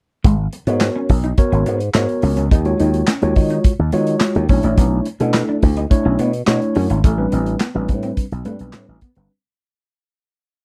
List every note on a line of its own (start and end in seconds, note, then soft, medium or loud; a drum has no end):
0.24 0.46 G#1 loud
0.24 0.32 G#3 medium
0.24 kick loud
0.24 closed hi-hat medium
0.53 muted clean electric guitar stroke soft
0.53 closed hi-hat medium
0.67 0.89 G#2 loud
0.67 0.75 B3 medium
0.67 1.17 B3 medium
0.67 1.17 F#4 medium
0.67 1.17 A#4 medium
0.67 1.17 C#5 medium
0.67 closed hi-hat medium
0.80 snare loud
0.80 clap medium
0.80 closed hi-hat medium
0.96 1.04 C#4 medium
1.09 1.31 B1 medium
1.09 muted clean electric guitar stroke soft
1.09 kick medium
1.09 open hi-hat medium
1.24 1.32 D#4 medium
1.24 closed hi-hat medium
1.38 1.78 B3 loud
1.38 1.78 F#4 medium
1.38 1.78 A#4 medium
1.38 1.78 C#5 loud
1.38 muted clean electric guitar stroke soft
1.38 kick loud
1.38 closed hi-hat medium
1.52 1.63 G#1 medium
1.52 1.60 C#4 medium
1.52 closed hi-hat soft
1.66 1.88 G#2 medium
1.66 1.74 B3 medium
1.66 closed hi-hat medium
1.80 closed hi-hat medium
1.94 2.05 G#2 loud
1.94 2.44 B3 medium
1.94 2.44 F#4 medium
1.94 2.44 A#4 medium
1.94 2.44 C#5 loud
1.94 muted clean electric guitar stroke soft
1.94 snare loud
1.94 clap medium
1.94 closed hi-hat medium
2.09 closed hi-hat soft
2.22 2.34 C#2 medium
2.22 2.31 C#4 medium
2.22 open hi-hat medium
2.37 2.48 C#2 loud
2.37 2.45 C#4 medium
2.37 closed hi-hat medium
2.51 2.73 D#2 loud
2.51 2.59 D#4 medium
2.51 kick loud
2.51 closed hi-hat medium
2.65 3.05 G#3 medium
2.65 3.05 F4 medium
2.65 3.05 F#4 medium
2.65 3.05 C#5 medium
2.65 muted clean electric guitar stroke soft
2.65 closed hi-hat soft
2.80 3.01 D#2 loud
2.80 2.88 D#4 medium
2.80 closed hi-hat medium
2.94 closed hi-hat soft
3.07 3.16 C#4 medium
3.07 snare loud
3.07 clap medium
3.07 closed hi-hat medium
3.22 3.33 D#2 medium
3.22 3.71 G#3 medium
3.22 3.72 F4 medium
3.22 3.72 F#4 medium
3.22 3.72 C#5 medium
3.22 closed hi-hat soft
3.36 3.58 D#3 loud
3.36 muted clean electric guitar stroke soft
3.36 kick medium
3.36 open hi-hat medium
3.50 3.58 D#4 medium
3.50 closed hi-hat soft
3.64 kick loud
3.64 closed hi-hat medium
3.79 3.90 D#2 medium
3.92 4.15 D#3 loud
3.92 4.42 G#3 loud
3.92 4.01 B3 medium
3.92 4.42 F4 medium
3.92 4.43 F#4 medium
3.92 4.43 C#5 loud
3.92 closed hi-hat medium
4.07 closed hi-hat medium
4.20 muted clean electric guitar stroke soft
4.20 snare loud
4.20 clap medium
4.20 closed hi-hat medium
4.35 4.46 D#2 medium
4.35 closed hi-hat soft
4.49 4.60 B1 loud
4.49 5.06 A3 medium
4.49 4.57 C#4 medium
4.49 5.06 D4 medium
4.49 5.06 E4 medium
4.49 5.06 C#5 medium
4.49 kick loud
4.49 open hi-hat medium
4.63 4.74 A1 medium
4.63 4.72 D4 medium
4.63 closed hi-hat medium
4.78 4.99 B1 loud
4.78 4.86 B3 medium
4.78 kick loud
4.78 closed hi-hat medium
5.06 muted clean electric guitar stroke soft
5.06 closed hi-hat medium
5.20 5.42 B2 medium
5.20 5.70 A3 medium
5.20 5.28 C#4 medium
5.20 5.70 D4 medium
5.20 5.70 E4 medium
5.20 5.70 A4 medium
5.20 closed hi-hat medium
5.34 snare loud
5.34 clap medium
5.34 closed hi-hat medium
5.49 5.57 D4 medium
5.62 5.84 D2 medium
5.62 muted clean electric guitar stroke soft
5.62 kick medium
5.62 open hi-hat medium
5.77 5.85 D#4 medium
5.77 closed hi-hat medium
5.90 6.30 A3 loud
5.90 6.30 D4 medium
5.90 6.30 E4 medium
5.90 6.31 C#5 loud
5.90 muted clean electric guitar stroke soft
5.90 kick loud
5.90 closed hi-hat medium
6.05 6.16 B1 medium
6.05 6.13 C#4 medium
6.19 6.41 B2 loud
6.19 6.27 B3 medium
6.19 closed hi-hat medium
6.33 closed hi-hat medium
6.46 6.58 B2 medium
6.46 6.97 A3 medium
6.46 6.97 D4 medium
6.46 6.97 E4 medium
6.46 6.97 C#5 loud
6.46 muted clean electric guitar stroke soft
6.46 snare loud
6.46 clap medium
6.46 closed hi-hat medium
6.62 closed hi-hat soft
6.75 6.87 F#2 medium
6.75 6.84 C#4 medium
6.75 open hi-hat medium
6.90 7.01 G#1 medium
6.90 6.98 C#4 medium
6.90 closed hi-hat medium
7.04 7.26 A1 loud
7.04 7.12 A3 medium
7.04 kick loud
7.04 closed hi-hat medium
7.18 7.58 G3 medium
7.18 7.58 C4 medium
7.18 7.58 D4 medium
7.18 7.58 B4 loud
7.18 muted clean electric guitar stroke soft
7.32 7.54 A1 loud
7.32 7.40 C4 medium
7.32 closed hi-hat medium
7.46 closed hi-hat medium
7.60 7.69 B3 medium
7.60 snare loud
7.60 clap medium
7.60 closed hi-hat medium
7.74 7.91 A1 loud
7.74 8.24 G3 medium
7.74 8.24 C4 medium
7.74 8.24 D4 medium
7.74 8.25 B4 medium
7.89 8.11 A2 loud
7.89 muted clean electric guitar stroke soft
7.89 kick medium
7.89 closed hi-hat medium
8.03 8.11 C4 medium
8.03 closed hi-hat medium
8.17 kick medium
8.17 closed hi-hat medium
8.32 8.42 B1 medium
8.32 closed hi-hat soft
8.45 8.57 G2 loud
8.45 8.95 G3 medium
8.45 8.54 A3 medium
8.45 8.95 C4 medium
8.45 8.95 D4 medium
8.45 8.95 B4 loud
8.45 closed hi-hat medium
8.59 8.71 B1 medium
8.59 closed hi-hat medium
8.73 8.85 A2 loud
8.73 muted clean electric guitar stroke soft
8.73 snare loud
8.73 clap medium
8.73 closed hi-hat medium
8.88 8.99 A1 medium
9.01 9.10 B3 medium
9.01 kick medium
9.01 closed hi-hat medium
9.15 9.27 G1 medium
9.15 9.30 G3 medium
9.15 9.30 C4 medium
9.15 9.24 C4 medium
9.15 9.31 D4 medium
9.15 9.31 B4 medium
9.15 closed hi-hat medium